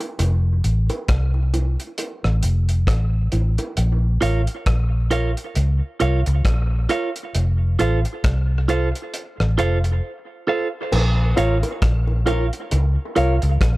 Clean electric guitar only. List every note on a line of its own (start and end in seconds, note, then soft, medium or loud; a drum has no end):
4.21 4.40 F4 medium
4.21 4.41 A#4 medium
4.21 4.41 C#5 medium
4.21 4.41 F5 medium
5.11 5.30 F4 medium
5.11 5.30 A#4 medium
5.11 5.31 C#5 medium
5.11 5.31 F5 medium
6.00 6.19 F4 medium
6.00 6.20 A#4 medium
6.00 6.20 C#5 medium
6.00 6.20 F5 loud
6.26 muted clean electric guitar stroke soft
6.89 7.09 F4 medium
6.89 7.09 A#4 medium
6.89 7.09 C#5 medium
6.89 7.10 F5 medium
7.79 7.98 F4 medium
7.79 7.99 A4 medium
7.79 7.99 C5 medium
7.79 7.99 F5 medium
8.68 8.88 F4 medium
8.68 8.88 A4 medium
8.68 8.88 C5 medium
8.68 8.89 F5 medium
9.58 9.77 F4 medium
9.58 9.78 A4 medium
9.58 9.78 C5 loud
9.58 9.78 F5 loud
9.84 muted clean electric guitar stroke medium
10.47 10.67 F4 medium
10.47 10.67 A4 medium
10.47 10.67 C5 medium
10.47 10.68 F5 medium
11.37 11.56 F4 medium
11.37 11.57 A#4 medium
11.37 11.57 C#5 medium
11.37 11.57 F5 loud
12.26 12.46 F4 medium
12.26 12.46 A#4 medium
12.26 12.46 C#5 medium
12.26 12.47 F5 medium
13.16 13.35 F4 medium
13.16 13.35 A#4 medium
13.16 13.36 C#5 medium
13.16 13.36 F5 medium
13.42 muted clean electric guitar stroke soft